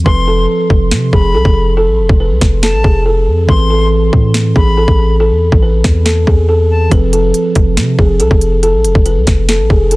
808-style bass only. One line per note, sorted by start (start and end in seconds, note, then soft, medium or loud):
0.06 0.47 F1 loud
0.70 0.93 F1 loud
0.91 1.12 C3 loud
1.13 1.36 F1 loud
1.34 1.45 C2 medium
1.45 1.89 F1 loud
1.88 2.00 A1 loud
1.99 2.09 F1 loud
2.09 2.32 F1 loud
2.31 2.41 C2 loud
2.41 2.75 F1 loud
2.74 2.84 A1 loud
2.84 3.29 F1 loud
3.27 3.48 F2 loud
3.49 4.10 A1 loud
4.13 4.54 A2 loud
4.56 4.87 A1 loud
4.88 5.32 A1 loud
5.31 5.51 E2 loud
5.52 5.83 A1 loud
5.84 6.25 E2 loud
6.27 6.89 E2 loud
6.91 7.33 F1 loud
7.56 7.79 F1 loud
7.77 7.98 C3 loud
7.99 8.22 F1 loud
8.20 8.30 C2 loud
8.31 8.75 F1 loud
8.74 8.86 A1 loud
8.84 8.95 F1 loud
8.95 9.18 F1 loud
9.17 9.27 C2 loud
9.27 9.61 F1 loud
9.59 9.70 A1 loud
9.70 9.96 F1 loud